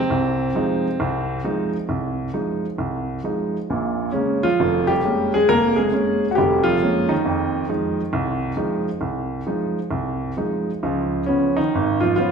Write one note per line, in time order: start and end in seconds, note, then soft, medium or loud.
0.00 1.70 C3 medium
0.00 1.69 C4 loud
0.10 0.49 C2 medium
0.55 0.86 F3 medium
0.55 0.87 G#3 soft
0.55 0.87 D#4 medium
1.00 1.38 C2 medium
1.44 1.75 F3 medium
1.44 1.75 G#3 soft
1.44 1.76 D#4 medium
1.89 2.27 C2 medium
2.33 2.65 F3 soft
2.33 2.65 G#3 soft
2.33 2.65 D#4 medium
2.78 3.18 C2 medium
3.24 3.56 F3 soft
3.24 3.56 G#3 soft
3.24 3.56 D#4 medium
3.70 4.09 A#1 medium
3.70 4.09 A#2 medium
4.12 4.43 C#3 medium
4.12 4.46 G#3 soft
4.12 4.46 A#3 soft
4.12 4.45 C#4 medium
4.43 4.87 F3 medium
4.43 4.91 F4 medium
4.60 4.99 F1 medium
4.87 5.31 G3 medium
4.87 5.35 G4 loud
5.04 5.35 G#3 medium
5.04 5.36 A#3 soft
5.04 5.36 C#4 medium
5.34 5.49 G#3 medium
5.34 5.48 G#4 loud
5.49 5.88 F1 medium
5.49 5.78 A#3 medium
5.49 5.76 A#4 loud
5.76 5.92 G#3 medium
5.76 6.29 G#4 medium
5.93 6.24 G#3 medium
5.93 6.24 A#3 soft
5.93 6.24 C#4 medium
6.31 6.36 F#4 medium
6.35 6.76 F1 medium
6.35 6.64 G3 medium
6.35 6.66 G4 medium
6.64 7.07 F3 medium
6.64 7.10 F4 loud
6.82 7.12 G#3 medium
6.82 7.13 A#3 medium
6.82 7.13 C#4 medium
7.09 8.82 D#3 medium
7.09 7.68 D#4 medium
7.25 7.63 F2 medium
7.69 8.00 F3 medium
7.69 8.00 G#3 soft
7.69 8.00 D#4 medium
8.13 8.51 C2 medium
8.57 8.88 F3 medium
8.57 8.88 G#3 soft
8.57 8.88 D#4 medium
9.01 9.40 C2 medium
9.47 9.78 F3 medium
9.47 9.78 G#3 soft
9.47 9.78 D#4 medium
9.91 10.31 C2 medium
10.37 10.69 F3 soft
10.37 10.70 G#3 soft
10.37 10.70 D#4 medium
10.83 11.23 C#2 medium
10.83 11.23 F3 medium
11.26 11.57 C#3 medium
11.26 11.60 F3 soft
11.26 11.60 B3 soft
11.26 11.55 C#4 medium
11.57 12.01 D#3 medium
11.57 12.00 D#4 medium
11.75 12.13 G#1 medium
12.00 12.17 F3 medium
12.00 12.15 F4 medium
12.16 12.32 F3 medium
12.16 12.32 B3 soft
12.16 12.32 C#4 medium
12.16 12.32 F4 medium